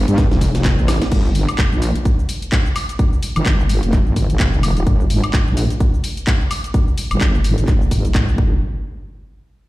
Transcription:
0.08 G2, closed hi-hat, shaker
0.18 kick, snare, closed hi-hat, shaker
0.31 F1, snare, shaker
0.41 kick, open hi-hat, shaker
0.55 snare, closed hi-hat, shaker
0.65 kick, snare, clap, closed hi-hat, shaker
0.78 A1, shaker
0.88 snare, open hi-hat, high woodblock, shaker
1.02 snare, closed hi-hat, shaker
1.12 G1, kick, closed hi-hat, crash, shaker
1.25 shaker
1.35 open hi-hat, shaker
1.49 closed hi-hat, high woodblock, shaker
1.58 kick, clap, closed hi-hat, shaker
1.72 A#1, shaker
1.82 open hi-hat, shaker
1.96 closed hi-hat, shaker
2.05 kick, closed hi-hat, shaker
2.19 shaker
2.29 open hi-hat, shaker
2.42 closed hi-hat, shaker
2.52 kick, clap, closed hi-hat, shaker
2.66 shaker
2.76 open hi-hat, high woodblock, shaker
2.89 closed hi-hat, shaker
2.99 kick, closed hi-hat, shaker
3.13 shaker
3.23 open hi-hat, shaker
3.36 G1, closed hi-hat, high woodblock, shaker
3.46 G1, kick, clap, closed hi-hat, shaker
3.60 shaker
3.69 open hi-hat, shaker
3.83 F1, closed hi-hat, shaker
3.93 kick, clap, closed hi-hat, shaker
4.06 G1, shaker
4.16 kick, open hi-hat, shaker
4.30 closed hi-hat, shaker
4.40 F1, kick, clap, closed hi-hat, shaker
4.53 shaker
4.63 open hi-hat, high woodblock, shaker
4.77 closed hi-hat, shaker
4.87 G1, kick, closed hi-hat, shaker
5.00 shaker
5.10 open hi-hat, shaker
5.24 closed hi-hat, high woodblock, shaker
5.33 kick, clap, closed hi-hat, shaker
5.47 A#1, shaker
5.57 open hi-hat, shaker
5.70 closed hi-hat, shaker
5.80 kick, closed hi-hat, shaker
5.94 shaker
6.04 open hi-hat, shaker
6.17 closed hi-hat, shaker
6.27 kick, clap, closed hi-hat, shaker
6.41 shaker
6.51 open hi-hat, high woodblock, shaker
6.64 closed hi-hat, shaker
6.74 kick, closed hi-hat, shaker
6.88 shaker
6.98 open hi-hat, shaker
7.11 G1, closed hi-hat, high woodblock, shaker
7.21 G1, kick, clap, closed hi-hat, shaker
7.35 shaker
7.44 open hi-hat, shaker
7.58 G1, closed hi-hat, shaker
7.68 G1, kick, clap, closed hi-hat, shaker
7.82 shaker
7.91 G1, kick, open hi-hat, shaker
8.05 closed hi-hat, shaker
8.15 kick, clap, closed hi-hat, shaker
8.28 G1, shaker
8.38 G1, kick

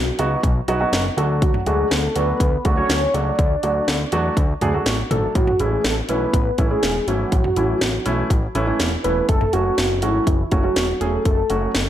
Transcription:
Already playing: B1 F#4
0.19 C#2 F#3 B3 D#4 F#4, closed hi-hat
0.43 B1, kick, closed hi-hat
0.68 B1 F#3 B3 D#4 F#4, closed hi-hat
0.81 F#3 B3 D#4 F#4
0.93 F#1, snare, closed hi-hat
1.17 D2 F#3 A3 D4 F#4 A4, closed hi-hat
1.42 F#4, kick, closed hi-hat
1.54 mid tom
1.66 D2 F#3 A3 D4 F#4 G#4, closed hi-hat
1.91 D2 A4, snare, closed hi-hat
2.16 D2 F#3 A3 D4 F#4 B4, closed hi-hat
2.40 D2, kick, closed hi-hat
2.65 D2 F#3 A3 D4 F#4, kick, closed hi-hat
2.77 F#3 A3 D4 F#4 C#5
2.89 D2, snare, closed hi-hat
3.14 C#2 F#3 A3 D4 F#4 D5, closed hi-hat
3.39 D2, kick, closed hi-hat
3.63 D2 F#3 A3 D4 F#4, closed hi-hat
3.88 D2, snare, closed hi-hat
4.12 E2 F#3 A3 D4 F#4, closed hi-hat
4.37 D2, kick, closed hi-hat
4.61 D2 F#3 A3 D4 G#4, closed hi-hat, mid tom
4.74 F#3 A3 D4 F#4
4.86 A1, snare, closed hi-hat
5.11 G#1 F#3 A3 D4 A4, closed hi-hat, mid tom
5.35 A1 F#4, kick, closed hi-hat
5.47 mid tom
5.60 A1 E3 A3 C#4 E4 G#4, closed hi-hat
5.84 A1 A4, snare, closed hi-hat
6.09 B1 E3 A3 C#4 E4 B4, closed hi-hat
6.34 A1, kick, closed hi-hat
6.58 A1 E3 A3 C#4 E4, kick, closed hi-hat
6.71 E3 A3 C#4 E4 G#4
6.83 E1, snare, closed hi-hat
7.07 G#1 E3 A3 C#4 E4 F#4, closed hi-hat
7.32 A1, kick, closed hi-hat
7.44 mid tom
7.56 A1 E3 A3 C#4 E4, closed hi-hat
7.81 A1, snare, closed hi-hat
8.06 B1 E3 A3 C#4 E4, closed hi-hat
8.30 A1, kick, closed hi-hat
8.55 A1 E3 A3 C#4 E4, closed hi-hat
8.67 E3 A3 C#4 E4
8.80 E1, snare, closed hi-hat
9.04 E1 E3 A3 C#4 E4 B4, closed hi-hat
9.29 F#1 A4, kick, closed hi-hat
9.41 mid tom
9.53 F#1 F#3 A3 C#4 F#4, closed hi-hat
9.78 F#1, snare, closed hi-hat
10.02 G#1 F#3 A3 C#4 E4 F#4, closed hi-hat
10.27 F#1, kick, closed hi-hat
10.51 F#1 F#3 A3 C#4 F#4, kick, closed hi-hat
10.64 F#3 A3 C#4 F#4
10.76 E1, snare, closed hi-hat
11.01 E1 F#3 A3 C#4 G#4 A4, closed hi-hat
11.25 F#1 A4, kick, closed hi-hat
11.50 F#1 F#3 A3 C#4 F#4, closed hi-hat
11.75 F#1, snare, closed hi-hat

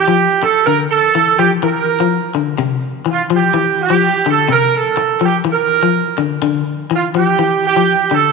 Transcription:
Already playing: G4
0.08 F3
0.42 A4, muted clean electric guitar stroke
0.65 D3 A#4
0.89 A4
1.15 E3
1.37 F3 G4
1.63 E3 A#4
2.00 F3
2.35 D3
2.58 C3
3.06 E3
3.11 F4
3.30 F3
3.35 G4
3.54 E3
3.81 G4
3.90 F3
4.26 D3 A4
4.49 C3 A#4
4.77 A4
4.97 muted clean electric guitar stroke
5.21 F3 G4
5.45 E3
5.51 A#4
5.83 F3
6.18 D3
6.42 D3
6.91 E3 F4
7.15 F3 G4
7.39 E3
7.65 G4
7.76 F3
8.11 D3 A4

